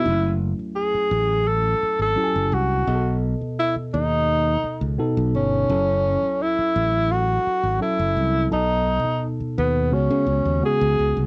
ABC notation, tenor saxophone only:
X:1
M:4/4
L:1/16
Q:1/4=85
K:F#dor
V:1 name="Tenor saxophone"
E2 z2 G4 A3 A3 F2- | F2 z2 E2 D6 z2 C2- | C4 E4 F4 E4 | D4 z2 B,2 C4 G4 |]